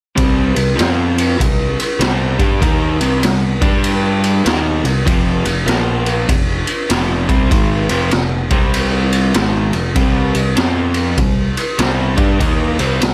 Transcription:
0.16 C2 C3 G3 C4, kick, ride
0.55 C2 C3 G3, ride
0.76 F2 F3 C4 F4, ride
0.80 snare
1.18 ride
1.38 C2 C3 G3, kick, ride
1.80 ride
1.99 C2 C3 G3 C4, snare, ride
2.39 G2 G3 D4 G4, kick, ride
2.61 D#2 D#3 A#3 D#4, kick, ride
3.00 C2 C3 G3 C4, ride
3.23 C2 C3 G3, snare, ride
3.62 G2 G3 D4 G4, kick, ride
3.84 ride
4.24 ride
4.44 D#2 D#3 A#3 D#4, snare, ride
4.84 C2 C3 G3, ride
5.06 F1 F2 C3 F3, kick, ride
5.45 F1 F2 C3, ride
5.66 A#1 A#2 F3 A#3, snare, ride
6.06 ride
6.28 F1 F2 C3, kick, ride
6.67 ride
6.90 F1 F2 C3 F3, snare, ride
7.28 C2 C3 G3 C4, kick, ride
7.51 G#1 G#2 D#3 G#3, kick, ride
7.89 F1 F2 C3 F3, ride
8.11 F1 F2 C3, snare, ride
8.50 C2 C3 G3 C4, kick, ride
8.74 ride
9.12 ride
9.34 G#1 G#2 D#3 G#3, snare, ride
9.73 F1 F2 C3, ride
9.95 C2 C3 G3 C4, kick, ride
10.34 C2 C3 G3, ride
10.56 F2 F3 C4 F4, snare, ride
10.94 ride
11.17 C2 C3 G3, kick, ride
11.57 ride
11.78 C2 C3 G3 C4, snare, ride
12.17 G2 G3 D4 G4, kick, ride
12.40 D#2 D#3 A#3 D#4, kick, ride
12.79 C2 C3 G3 C4, ride
13.01 C2 C3 G3, snare, ride

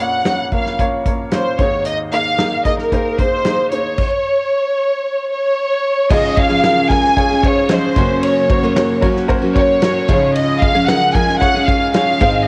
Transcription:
Already playing: A#1 F2
0.00 A#3 C#4 F4 C#5 F#5
0.24 A#3 C#4 F4 C#5, snare, closed hi-hat
0.52 A#3 C#4 F4 A#4 F5, kick, closed hi-hat
0.66 snare
0.79 A#3 C#4 F4 C#5, kick, closed hi-hat
1.06 A#3 C#4 F4 C#5, kick, closed hi-hat
1.32 A#3 C#4 F4 C5 C#5, snare, closed hi-hat
1.59 G#1 D#2 A#3 D#4 G#4 C5 C#5, kick, closed hi-hat
1.85 D#5, closed hi-hat
2.12 A#3 D#4 G#4 D#5 F5, closed hi-hat
2.38 A#3 D#4 G#4 A#4, snare, closed hi-hat
2.65 A#3 D#4 G#4 A#4 D#5, kick, closed hi-hat
2.78 A#4, snare
2.92 A#3 D#4 G#4 C5, kick, closed hi-hat
3.18 A#3 D#4 G#4 C5, kick, closed hi-hat
3.45 A#3 D#4 G#4 D#5, snare, closed hi-hat
3.71 A#3 D#4 G#4 C5 C#5, closed hi-hat
3.98 kick, crash
5.31 C#5
6.09 C#2 G#2 C#3 F3 G#3 C#4 F4 G#4 C#5 D#5, kick, crash
6.37 F4 G#4 C#5 F5, kick, ride
6.50 C#3 F3 G#3 C#4 G#4
6.64 F4 G#4 A#4, snare, ride
6.90 F3 G#3 C#4 F4 G#4 A#4 G#5, kick, ride
7.04 snare
7.16 F4 G#4 C#5, kick, ride
7.30 G#3 C#4 G#4
7.43 F4 G#4 C5 C#5, kick, ride
7.69 F3 G#3 C#4 F4 G#4 C5 D#5, snare, ride
7.96 F#2 C#3 F#3 A#3 C#4 F#4 A#4 C#5, kick, ride
8.23 C#5, ride
8.50 F#4 A#4 C5, kick, ride
8.63 F#2 C#3 F#3 A#3 C#4 F#4
8.76 F#4 A#4 C#5, snare, ride
9.01 F#3 A#3 C#4 F#4 A#4 C#5, kick, ride
9.16 snare
9.28 F#4 A#4 C5, kick, ride
9.41 F#3 A#3 C#4 F#4
9.56 F#4 A#4 C#5, kick, ride
9.82 F#3 A#3 C#4 F#4 A#4 C#5, snare, ride
10.08 C#2 G#2 C#3 F3 G#3 C#4 F4 G#4 C#5, kick, ride
10.35 D#5, ride
10.59 F4 G#4 D#5 F5, kick, ride
10.74 C#3 F3 G#3 C#4 G#4
10.86 F4 G#4 A#4 F#5, snare, ride
11.13 F3 G#3 C#4 F4 G#4 A#4 G#5, kick, ride
11.29 snare
11.38 F4 G#4 C#5 F#5, kick, ride
11.54 G#3 C#4 G#4
11.65 F4 G#4 C#5 F5, kick, ride
11.93 F3 G#3 C#4 F4 G#4 C#5 F5, snare, ride
12.19 G#2 D#3 G#3 C4 D#4 G#4 C5, kick, ride

